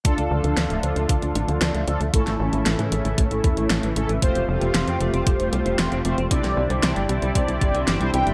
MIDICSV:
0, 0, Header, 1, 6, 480
1, 0, Start_track
1, 0, Key_signature, -1, "minor"
1, 0, Tempo, 521739
1, 46, Time_signature, 4, 2, 24, 8
1, 7670, End_track
2, 0, Start_track
2, 0, Title_t, "Analog polysynth"
2, 0, Program_c, 0, 90
2, 46, Note_on_c, 0, 62, 93
2, 46, Note_on_c, 0, 65, 85
2, 46, Note_on_c, 0, 69, 99
2, 1697, Note_off_c, 0, 62, 0
2, 1697, Note_off_c, 0, 65, 0
2, 1697, Note_off_c, 0, 69, 0
2, 1726, Note_on_c, 0, 62, 88
2, 1726, Note_on_c, 0, 65, 81
2, 1726, Note_on_c, 0, 69, 98
2, 1856, Note_off_c, 0, 62, 0
2, 1856, Note_off_c, 0, 65, 0
2, 1856, Note_off_c, 0, 69, 0
2, 1966, Note_on_c, 0, 61, 90
2, 1966, Note_on_c, 0, 64, 81
2, 1966, Note_on_c, 0, 69, 97
2, 3617, Note_off_c, 0, 61, 0
2, 3617, Note_off_c, 0, 64, 0
2, 3617, Note_off_c, 0, 69, 0
2, 3646, Note_on_c, 0, 61, 90
2, 3646, Note_on_c, 0, 64, 80
2, 3646, Note_on_c, 0, 69, 103
2, 3775, Note_off_c, 0, 61, 0
2, 3776, Note_off_c, 0, 64, 0
2, 3776, Note_off_c, 0, 69, 0
2, 3885, Note_on_c, 0, 57, 91
2, 3885, Note_on_c, 0, 72, 102
2, 3886, Note_on_c, 0, 60, 81
2, 3886, Note_on_c, 0, 65, 83
2, 3886, Note_on_c, 0, 67, 87
2, 5537, Note_off_c, 0, 57, 0
2, 5537, Note_off_c, 0, 60, 0
2, 5537, Note_off_c, 0, 65, 0
2, 5537, Note_off_c, 0, 67, 0
2, 5537, Note_off_c, 0, 72, 0
2, 5565, Note_on_c, 0, 57, 88
2, 5565, Note_on_c, 0, 60, 83
2, 5565, Note_on_c, 0, 65, 79
2, 5565, Note_on_c, 0, 67, 81
2, 5565, Note_on_c, 0, 72, 99
2, 5695, Note_off_c, 0, 57, 0
2, 5695, Note_off_c, 0, 60, 0
2, 5695, Note_off_c, 0, 65, 0
2, 5695, Note_off_c, 0, 67, 0
2, 5695, Note_off_c, 0, 72, 0
2, 5805, Note_on_c, 0, 60, 89
2, 5805, Note_on_c, 0, 62, 80
2, 5805, Note_on_c, 0, 64, 82
2, 5805, Note_on_c, 0, 67, 85
2, 5805, Note_on_c, 0, 74, 104
2, 7341, Note_off_c, 0, 62, 0
2, 7341, Note_off_c, 0, 64, 0
2, 7341, Note_off_c, 0, 74, 0
2, 7342, Note_off_c, 0, 60, 0
2, 7342, Note_off_c, 0, 67, 0
2, 7365, Note_on_c, 0, 60, 92
2, 7365, Note_on_c, 0, 62, 83
2, 7365, Note_on_c, 0, 64, 82
2, 7365, Note_on_c, 0, 67, 88
2, 7365, Note_on_c, 0, 72, 102
2, 7457, Note_off_c, 0, 60, 0
2, 7457, Note_off_c, 0, 62, 0
2, 7457, Note_off_c, 0, 64, 0
2, 7457, Note_off_c, 0, 67, 0
2, 7457, Note_off_c, 0, 72, 0
2, 7485, Note_on_c, 0, 60, 105
2, 7485, Note_on_c, 0, 62, 91
2, 7485, Note_on_c, 0, 64, 89
2, 7485, Note_on_c, 0, 67, 94
2, 7485, Note_on_c, 0, 79, 115
2, 7670, Note_off_c, 0, 60, 0
2, 7670, Note_off_c, 0, 62, 0
2, 7670, Note_off_c, 0, 64, 0
2, 7670, Note_off_c, 0, 67, 0
2, 7670, Note_off_c, 0, 79, 0
2, 7670, End_track
3, 0, Start_track
3, 0, Title_t, "Analog synth pad"
3, 0, Program_c, 1, 89
3, 45, Note_on_c, 1, 50, 76
3, 45, Note_on_c, 1, 53, 71
3, 45, Note_on_c, 1, 57, 72
3, 45, Note_on_c, 1, 65, 87
3, 1946, Note_off_c, 1, 50, 0
3, 1946, Note_off_c, 1, 53, 0
3, 1946, Note_off_c, 1, 65, 0
3, 1966, Note_on_c, 1, 49, 74
3, 1966, Note_on_c, 1, 52, 69
3, 1967, Note_on_c, 1, 64, 84
3, 3867, Note_off_c, 1, 49, 0
3, 3867, Note_off_c, 1, 52, 0
3, 3867, Note_off_c, 1, 64, 0
3, 3887, Note_on_c, 1, 48, 74
3, 3887, Note_on_c, 1, 55, 69
3, 3887, Note_on_c, 1, 65, 84
3, 5769, Note_off_c, 1, 57, 0
3, 5787, Note_off_c, 1, 48, 0
3, 5787, Note_off_c, 1, 65, 0
3, 5807, Note_on_c, 1, 50, 74
3, 5807, Note_on_c, 1, 60, 74
3, 5807, Note_on_c, 1, 64, 82
3, 7670, Note_off_c, 1, 50, 0
3, 7670, Note_off_c, 1, 55, 0
3, 7670, Note_off_c, 1, 60, 0
3, 7670, Note_off_c, 1, 64, 0
3, 7670, End_track
4, 0, Start_track
4, 0, Title_t, "Clean electric guitar"
4, 0, Program_c, 2, 27
4, 45, Note_on_c, 2, 50, 96
4, 106, Note_off_c, 2, 50, 0
4, 167, Note_on_c, 2, 50, 72
4, 226, Note_off_c, 2, 50, 0
4, 287, Note_on_c, 2, 50, 90
4, 322, Note_off_c, 2, 50, 0
4, 407, Note_on_c, 2, 50, 93
4, 496, Note_off_c, 2, 50, 0
4, 527, Note_on_c, 2, 62, 78
4, 616, Note_off_c, 2, 62, 0
4, 647, Note_on_c, 2, 57, 101
4, 706, Note_off_c, 2, 57, 0
4, 767, Note_on_c, 2, 53, 75
4, 856, Note_off_c, 2, 53, 0
4, 886, Note_on_c, 2, 57, 71
4, 946, Note_off_c, 2, 57, 0
4, 1006, Note_on_c, 2, 50, 96
4, 1066, Note_off_c, 2, 50, 0
4, 1126, Note_on_c, 2, 50, 70
4, 1186, Note_off_c, 2, 50, 0
4, 1245, Note_on_c, 2, 50, 95
4, 1281, Note_off_c, 2, 50, 0
4, 1366, Note_on_c, 2, 50, 96
4, 1456, Note_off_c, 2, 50, 0
4, 1486, Note_on_c, 2, 62, 74
4, 1576, Note_off_c, 2, 62, 0
4, 1605, Note_on_c, 2, 57, 96
4, 1665, Note_off_c, 2, 57, 0
4, 1725, Note_on_c, 2, 53, 74
4, 1816, Note_off_c, 2, 53, 0
4, 1845, Note_on_c, 2, 57, 72
4, 1905, Note_off_c, 2, 57, 0
4, 1965, Note_on_c, 2, 45, 97
4, 2025, Note_off_c, 2, 45, 0
4, 2085, Note_on_c, 2, 45, 73
4, 2145, Note_off_c, 2, 45, 0
4, 2206, Note_on_c, 2, 45, 94
4, 2242, Note_off_c, 2, 45, 0
4, 2326, Note_on_c, 2, 45, 99
4, 2416, Note_off_c, 2, 45, 0
4, 2446, Note_on_c, 2, 57, 78
4, 2536, Note_off_c, 2, 57, 0
4, 2566, Note_on_c, 2, 52, 99
4, 2626, Note_off_c, 2, 52, 0
4, 2686, Note_on_c, 2, 49, 73
4, 2776, Note_off_c, 2, 49, 0
4, 2806, Note_on_c, 2, 52, 70
4, 2866, Note_off_c, 2, 52, 0
4, 2925, Note_on_c, 2, 45, 92
4, 2985, Note_off_c, 2, 45, 0
4, 3045, Note_on_c, 2, 45, 74
4, 3106, Note_off_c, 2, 45, 0
4, 3165, Note_on_c, 2, 45, 96
4, 3202, Note_off_c, 2, 45, 0
4, 3286, Note_on_c, 2, 45, 100
4, 3376, Note_off_c, 2, 45, 0
4, 3406, Note_on_c, 2, 57, 72
4, 3496, Note_off_c, 2, 57, 0
4, 3525, Note_on_c, 2, 52, 98
4, 3586, Note_off_c, 2, 52, 0
4, 3645, Note_on_c, 2, 49, 73
4, 3735, Note_off_c, 2, 49, 0
4, 3765, Note_on_c, 2, 52, 74
4, 3826, Note_off_c, 2, 52, 0
4, 3885, Note_on_c, 2, 53, 93
4, 3945, Note_off_c, 2, 53, 0
4, 4005, Note_on_c, 2, 53, 70
4, 4065, Note_off_c, 2, 53, 0
4, 4125, Note_on_c, 2, 53, 93
4, 4162, Note_off_c, 2, 53, 0
4, 4247, Note_on_c, 2, 53, 98
4, 4336, Note_off_c, 2, 53, 0
4, 4366, Note_on_c, 2, 65, 85
4, 4456, Note_off_c, 2, 65, 0
4, 4486, Note_on_c, 2, 60, 100
4, 4546, Note_off_c, 2, 60, 0
4, 4606, Note_on_c, 2, 57, 74
4, 4696, Note_off_c, 2, 57, 0
4, 4726, Note_on_c, 2, 60, 72
4, 4786, Note_off_c, 2, 60, 0
4, 4846, Note_on_c, 2, 53, 95
4, 4906, Note_off_c, 2, 53, 0
4, 4966, Note_on_c, 2, 53, 74
4, 5026, Note_off_c, 2, 53, 0
4, 5085, Note_on_c, 2, 53, 100
4, 5121, Note_off_c, 2, 53, 0
4, 5205, Note_on_c, 2, 53, 97
4, 5295, Note_off_c, 2, 53, 0
4, 5325, Note_on_c, 2, 65, 72
4, 5415, Note_off_c, 2, 65, 0
4, 5445, Note_on_c, 2, 60, 93
4, 5505, Note_off_c, 2, 60, 0
4, 5564, Note_on_c, 2, 57, 73
4, 5655, Note_off_c, 2, 57, 0
4, 5684, Note_on_c, 2, 60, 78
4, 5745, Note_off_c, 2, 60, 0
4, 5803, Note_on_c, 2, 48, 98
4, 5865, Note_off_c, 2, 48, 0
4, 5924, Note_on_c, 2, 48, 68
4, 5985, Note_off_c, 2, 48, 0
4, 6045, Note_on_c, 2, 48, 88
4, 6081, Note_off_c, 2, 48, 0
4, 6166, Note_on_c, 2, 48, 97
4, 6256, Note_off_c, 2, 48, 0
4, 6286, Note_on_c, 2, 60, 79
4, 6376, Note_off_c, 2, 60, 0
4, 6406, Note_on_c, 2, 55, 98
4, 6466, Note_off_c, 2, 55, 0
4, 6526, Note_on_c, 2, 52, 74
4, 6616, Note_off_c, 2, 52, 0
4, 6646, Note_on_c, 2, 55, 73
4, 6706, Note_off_c, 2, 55, 0
4, 6766, Note_on_c, 2, 48, 96
4, 6826, Note_off_c, 2, 48, 0
4, 6887, Note_on_c, 2, 48, 70
4, 6946, Note_off_c, 2, 48, 0
4, 7006, Note_on_c, 2, 48, 93
4, 7042, Note_off_c, 2, 48, 0
4, 7126, Note_on_c, 2, 48, 99
4, 7216, Note_off_c, 2, 48, 0
4, 7245, Note_on_c, 2, 60, 75
4, 7336, Note_off_c, 2, 60, 0
4, 7366, Note_on_c, 2, 55, 91
4, 7426, Note_off_c, 2, 55, 0
4, 7487, Note_on_c, 2, 52, 71
4, 7576, Note_off_c, 2, 52, 0
4, 7606, Note_on_c, 2, 55, 69
4, 7666, Note_off_c, 2, 55, 0
4, 7670, End_track
5, 0, Start_track
5, 0, Title_t, "Analog synth bass"
5, 0, Program_c, 3, 38
5, 45, Note_on_c, 3, 38, 96
5, 144, Note_off_c, 3, 38, 0
5, 165, Note_on_c, 3, 38, 75
5, 264, Note_off_c, 3, 38, 0
5, 284, Note_on_c, 3, 38, 94
5, 384, Note_off_c, 3, 38, 0
5, 405, Note_on_c, 3, 38, 80
5, 504, Note_off_c, 3, 38, 0
5, 524, Note_on_c, 3, 38, 102
5, 624, Note_off_c, 3, 38, 0
5, 644, Note_on_c, 3, 26, 77
5, 744, Note_off_c, 3, 26, 0
5, 765, Note_on_c, 3, 38, 90
5, 864, Note_off_c, 3, 38, 0
5, 885, Note_on_c, 3, 38, 82
5, 984, Note_off_c, 3, 38, 0
5, 1005, Note_on_c, 3, 38, 96
5, 1104, Note_off_c, 3, 38, 0
5, 1125, Note_on_c, 3, 38, 77
5, 1224, Note_off_c, 3, 38, 0
5, 1245, Note_on_c, 3, 33, 93
5, 1344, Note_off_c, 3, 33, 0
5, 1364, Note_on_c, 3, 38, 80
5, 1464, Note_off_c, 3, 38, 0
5, 1485, Note_on_c, 3, 38, 98
5, 1584, Note_off_c, 3, 38, 0
5, 1605, Note_on_c, 3, 38, 73
5, 1704, Note_off_c, 3, 38, 0
5, 1725, Note_on_c, 3, 38, 93
5, 1824, Note_off_c, 3, 38, 0
5, 1845, Note_on_c, 3, 38, 78
5, 1944, Note_off_c, 3, 38, 0
5, 1966, Note_on_c, 3, 33, 96
5, 2064, Note_off_c, 3, 33, 0
5, 2086, Note_on_c, 3, 33, 72
5, 2184, Note_off_c, 3, 33, 0
5, 2206, Note_on_c, 3, 33, 102
5, 2304, Note_off_c, 3, 33, 0
5, 2326, Note_on_c, 3, 33, 84
5, 2424, Note_off_c, 3, 33, 0
5, 2445, Note_on_c, 3, 33, 105
5, 2544, Note_off_c, 3, 33, 0
5, 2566, Note_on_c, 3, 45, 71
5, 2664, Note_off_c, 3, 45, 0
5, 2687, Note_on_c, 3, 33, 90
5, 2785, Note_off_c, 3, 33, 0
5, 2806, Note_on_c, 3, 33, 79
5, 2904, Note_off_c, 3, 33, 0
5, 2925, Note_on_c, 3, 33, 99
5, 3024, Note_off_c, 3, 33, 0
5, 3046, Note_on_c, 3, 33, 75
5, 3145, Note_off_c, 3, 33, 0
5, 3166, Note_on_c, 3, 40, 85
5, 3264, Note_off_c, 3, 40, 0
5, 3286, Note_on_c, 3, 33, 81
5, 3384, Note_off_c, 3, 33, 0
5, 3406, Note_on_c, 3, 33, 105
5, 3504, Note_off_c, 3, 33, 0
5, 3526, Note_on_c, 3, 33, 74
5, 3624, Note_off_c, 3, 33, 0
5, 3646, Note_on_c, 3, 33, 95
5, 3744, Note_off_c, 3, 33, 0
5, 3765, Note_on_c, 3, 33, 79
5, 3864, Note_off_c, 3, 33, 0
5, 3886, Note_on_c, 3, 29, 94
5, 3984, Note_off_c, 3, 29, 0
5, 4005, Note_on_c, 3, 29, 71
5, 4104, Note_off_c, 3, 29, 0
5, 4125, Note_on_c, 3, 29, 103
5, 4224, Note_off_c, 3, 29, 0
5, 4245, Note_on_c, 3, 29, 80
5, 4344, Note_off_c, 3, 29, 0
5, 4365, Note_on_c, 3, 29, 105
5, 4464, Note_off_c, 3, 29, 0
5, 4486, Note_on_c, 3, 41, 73
5, 4584, Note_off_c, 3, 41, 0
5, 4605, Note_on_c, 3, 29, 92
5, 4704, Note_off_c, 3, 29, 0
5, 4724, Note_on_c, 3, 29, 83
5, 4824, Note_off_c, 3, 29, 0
5, 4845, Note_on_c, 3, 29, 96
5, 4944, Note_off_c, 3, 29, 0
5, 4965, Note_on_c, 3, 29, 79
5, 5064, Note_off_c, 3, 29, 0
5, 5085, Note_on_c, 3, 36, 90
5, 5184, Note_off_c, 3, 36, 0
5, 5205, Note_on_c, 3, 29, 81
5, 5304, Note_off_c, 3, 29, 0
5, 5325, Note_on_c, 3, 29, 103
5, 5424, Note_off_c, 3, 29, 0
5, 5445, Note_on_c, 3, 29, 72
5, 5544, Note_off_c, 3, 29, 0
5, 5565, Note_on_c, 3, 29, 96
5, 5664, Note_off_c, 3, 29, 0
5, 5684, Note_on_c, 3, 29, 80
5, 5784, Note_off_c, 3, 29, 0
5, 5805, Note_on_c, 3, 36, 101
5, 5904, Note_off_c, 3, 36, 0
5, 5924, Note_on_c, 3, 36, 77
5, 6023, Note_off_c, 3, 36, 0
5, 6044, Note_on_c, 3, 36, 99
5, 6144, Note_off_c, 3, 36, 0
5, 6164, Note_on_c, 3, 36, 81
5, 6264, Note_off_c, 3, 36, 0
5, 6285, Note_on_c, 3, 36, 105
5, 6384, Note_off_c, 3, 36, 0
5, 6405, Note_on_c, 3, 31, 78
5, 6504, Note_off_c, 3, 31, 0
5, 6524, Note_on_c, 3, 36, 88
5, 6624, Note_off_c, 3, 36, 0
5, 6645, Note_on_c, 3, 36, 75
5, 6744, Note_off_c, 3, 36, 0
5, 6765, Note_on_c, 3, 36, 102
5, 6864, Note_off_c, 3, 36, 0
5, 6886, Note_on_c, 3, 36, 77
5, 6984, Note_off_c, 3, 36, 0
5, 7005, Note_on_c, 3, 31, 89
5, 7104, Note_off_c, 3, 31, 0
5, 7126, Note_on_c, 3, 36, 83
5, 7224, Note_off_c, 3, 36, 0
5, 7246, Note_on_c, 3, 31, 97
5, 7344, Note_off_c, 3, 31, 0
5, 7365, Note_on_c, 3, 36, 73
5, 7464, Note_off_c, 3, 36, 0
5, 7486, Note_on_c, 3, 36, 97
5, 7584, Note_off_c, 3, 36, 0
5, 7606, Note_on_c, 3, 31, 80
5, 7670, Note_off_c, 3, 31, 0
5, 7670, End_track
6, 0, Start_track
6, 0, Title_t, "Drums"
6, 45, Note_on_c, 9, 36, 110
6, 46, Note_on_c, 9, 42, 96
6, 137, Note_off_c, 9, 36, 0
6, 138, Note_off_c, 9, 42, 0
6, 166, Note_on_c, 9, 42, 39
6, 258, Note_off_c, 9, 42, 0
6, 406, Note_on_c, 9, 42, 38
6, 498, Note_off_c, 9, 42, 0
6, 526, Note_on_c, 9, 38, 116
6, 526, Note_on_c, 9, 42, 94
6, 618, Note_off_c, 9, 38, 0
6, 618, Note_off_c, 9, 42, 0
6, 646, Note_on_c, 9, 42, 39
6, 738, Note_off_c, 9, 42, 0
6, 766, Note_on_c, 9, 42, 61
6, 858, Note_off_c, 9, 42, 0
6, 886, Note_on_c, 9, 42, 40
6, 978, Note_off_c, 9, 42, 0
6, 1005, Note_on_c, 9, 36, 115
6, 1006, Note_on_c, 9, 42, 93
6, 1097, Note_off_c, 9, 36, 0
6, 1098, Note_off_c, 9, 42, 0
6, 1126, Note_on_c, 9, 42, 37
6, 1218, Note_off_c, 9, 42, 0
6, 1246, Note_on_c, 9, 42, 64
6, 1338, Note_off_c, 9, 42, 0
6, 1366, Note_on_c, 9, 42, 36
6, 1458, Note_off_c, 9, 42, 0
6, 1485, Note_on_c, 9, 38, 119
6, 1485, Note_on_c, 9, 42, 96
6, 1577, Note_off_c, 9, 38, 0
6, 1577, Note_off_c, 9, 42, 0
6, 1606, Note_on_c, 9, 42, 40
6, 1698, Note_off_c, 9, 42, 0
6, 1725, Note_on_c, 9, 42, 67
6, 1817, Note_off_c, 9, 42, 0
6, 1846, Note_on_c, 9, 42, 39
6, 1938, Note_off_c, 9, 42, 0
6, 1966, Note_on_c, 9, 36, 119
6, 1966, Note_on_c, 9, 42, 97
6, 2058, Note_off_c, 9, 36, 0
6, 2058, Note_off_c, 9, 42, 0
6, 2086, Note_on_c, 9, 38, 36
6, 2086, Note_on_c, 9, 42, 39
6, 2178, Note_off_c, 9, 38, 0
6, 2178, Note_off_c, 9, 42, 0
6, 2326, Note_on_c, 9, 42, 39
6, 2418, Note_off_c, 9, 42, 0
6, 2446, Note_on_c, 9, 38, 115
6, 2446, Note_on_c, 9, 42, 92
6, 2538, Note_off_c, 9, 38, 0
6, 2538, Note_off_c, 9, 42, 0
6, 2567, Note_on_c, 9, 42, 41
6, 2659, Note_off_c, 9, 42, 0
6, 2686, Note_on_c, 9, 42, 67
6, 2778, Note_off_c, 9, 42, 0
6, 2807, Note_on_c, 9, 42, 40
6, 2899, Note_off_c, 9, 42, 0
6, 2926, Note_on_c, 9, 36, 112
6, 2926, Note_on_c, 9, 42, 92
6, 3018, Note_off_c, 9, 36, 0
6, 3018, Note_off_c, 9, 42, 0
6, 3046, Note_on_c, 9, 42, 37
6, 3138, Note_off_c, 9, 42, 0
6, 3166, Note_on_c, 9, 36, 101
6, 3166, Note_on_c, 9, 42, 63
6, 3258, Note_off_c, 9, 36, 0
6, 3258, Note_off_c, 9, 42, 0
6, 3286, Note_on_c, 9, 42, 38
6, 3378, Note_off_c, 9, 42, 0
6, 3405, Note_on_c, 9, 38, 117
6, 3405, Note_on_c, 9, 42, 94
6, 3497, Note_off_c, 9, 38, 0
6, 3497, Note_off_c, 9, 42, 0
6, 3526, Note_on_c, 9, 42, 41
6, 3618, Note_off_c, 9, 42, 0
6, 3646, Note_on_c, 9, 42, 69
6, 3738, Note_off_c, 9, 42, 0
6, 3766, Note_on_c, 9, 42, 40
6, 3858, Note_off_c, 9, 42, 0
6, 3886, Note_on_c, 9, 36, 116
6, 3886, Note_on_c, 9, 42, 98
6, 3978, Note_off_c, 9, 36, 0
6, 3978, Note_off_c, 9, 42, 0
6, 4006, Note_on_c, 9, 42, 39
6, 4098, Note_off_c, 9, 42, 0
6, 4246, Note_on_c, 9, 42, 37
6, 4338, Note_off_c, 9, 42, 0
6, 4365, Note_on_c, 9, 38, 124
6, 4365, Note_on_c, 9, 42, 92
6, 4457, Note_off_c, 9, 38, 0
6, 4457, Note_off_c, 9, 42, 0
6, 4486, Note_on_c, 9, 42, 39
6, 4578, Note_off_c, 9, 42, 0
6, 4605, Note_on_c, 9, 42, 61
6, 4697, Note_off_c, 9, 42, 0
6, 4726, Note_on_c, 9, 42, 39
6, 4818, Note_off_c, 9, 42, 0
6, 4845, Note_on_c, 9, 36, 126
6, 4845, Note_on_c, 9, 42, 97
6, 4937, Note_off_c, 9, 36, 0
6, 4937, Note_off_c, 9, 42, 0
6, 4966, Note_on_c, 9, 42, 39
6, 5058, Note_off_c, 9, 42, 0
6, 5085, Note_on_c, 9, 42, 64
6, 5177, Note_off_c, 9, 42, 0
6, 5205, Note_on_c, 9, 42, 38
6, 5297, Note_off_c, 9, 42, 0
6, 5325, Note_on_c, 9, 38, 123
6, 5325, Note_on_c, 9, 42, 93
6, 5417, Note_off_c, 9, 38, 0
6, 5417, Note_off_c, 9, 42, 0
6, 5445, Note_on_c, 9, 42, 39
6, 5537, Note_off_c, 9, 42, 0
6, 5565, Note_on_c, 9, 42, 70
6, 5657, Note_off_c, 9, 42, 0
6, 5686, Note_on_c, 9, 42, 39
6, 5778, Note_off_c, 9, 42, 0
6, 5805, Note_on_c, 9, 36, 121
6, 5805, Note_on_c, 9, 42, 93
6, 5897, Note_off_c, 9, 36, 0
6, 5897, Note_off_c, 9, 42, 0
6, 5925, Note_on_c, 9, 38, 36
6, 5925, Note_on_c, 9, 42, 38
6, 6017, Note_off_c, 9, 38, 0
6, 6017, Note_off_c, 9, 42, 0
6, 6165, Note_on_c, 9, 42, 38
6, 6257, Note_off_c, 9, 42, 0
6, 6285, Note_on_c, 9, 38, 121
6, 6285, Note_on_c, 9, 42, 91
6, 6377, Note_off_c, 9, 38, 0
6, 6377, Note_off_c, 9, 42, 0
6, 6406, Note_on_c, 9, 42, 40
6, 6498, Note_off_c, 9, 42, 0
6, 6525, Note_on_c, 9, 42, 63
6, 6617, Note_off_c, 9, 42, 0
6, 6645, Note_on_c, 9, 42, 39
6, 6737, Note_off_c, 9, 42, 0
6, 6765, Note_on_c, 9, 36, 116
6, 6765, Note_on_c, 9, 42, 89
6, 6857, Note_off_c, 9, 36, 0
6, 6857, Note_off_c, 9, 42, 0
6, 6886, Note_on_c, 9, 42, 37
6, 6978, Note_off_c, 9, 42, 0
6, 7005, Note_on_c, 9, 36, 103
6, 7006, Note_on_c, 9, 42, 58
6, 7097, Note_off_c, 9, 36, 0
6, 7098, Note_off_c, 9, 42, 0
6, 7127, Note_on_c, 9, 42, 35
6, 7219, Note_off_c, 9, 42, 0
6, 7246, Note_on_c, 9, 38, 120
6, 7246, Note_on_c, 9, 42, 88
6, 7338, Note_off_c, 9, 38, 0
6, 7338, Note_off_c, 9, 42, 0
6, 7366, Note_on_c, 9, 42, 37
6, 7458, Note_off_c, 9, 42, 0
6, 7486, Note_on_c, 9, 42, 62
6, 7578, Note_off_c, 9, 42, 0
6, 7606, Note_on_c, 9, 42, 37
6, 7670, Note_off_c, 9, 42, 0
6, 7670, End_track
0, 0, End_of_file